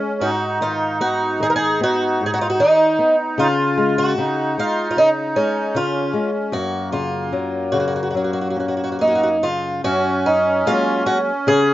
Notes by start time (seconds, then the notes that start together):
Already playing: G#3 C#4
0.20 G#2 D#4 F#4
0.61 D#3 F4
1.00 B3 F#4
1.40 D#3 G#4
1.50 A#4
1.56 G#4
1.81 B3 F#4
2.21 G#2
2.26 G#4
2.34 F#4
2.41 F4
2.50 F#4
2.60 D#3 D#4
2.99 B3
3.38 C#3 F4
3.77 G#3
3.98 F#4
4.18 C#3 D#4
4.58 G#3 F4
4.91 F4
4.97 C#3 D#4
5.36 G#3 C#4
5.73 C#3 C#4 F4
6.13 G#3
6.52 F#2 A#3 F#4
6.92 C#3 F4
7.33 F#3
7.72 C#3 F#4
7.80 F#4
7.88 F#4
7.96 F#4
8.03 F#4
8.10 F#4
8.15 F#3 F#4
8.24 F#4
8.33 F#4
8.41 F#4
8.50 F#4
8.56 C#4 F#4
8.68 F#4
8.77 F#4
8.84 F#4
8.92 F#4
8.99 A#3 D#4 F#4
9.08 F#4
9.15 F#4
9.23 F#4
9.43 C#3 F4
9.84 F#2 C#4 F#4
10.26 D#4
10.66 F#3 G#3 A#3 F4
11.06 F#4
11.47 C#3 G#4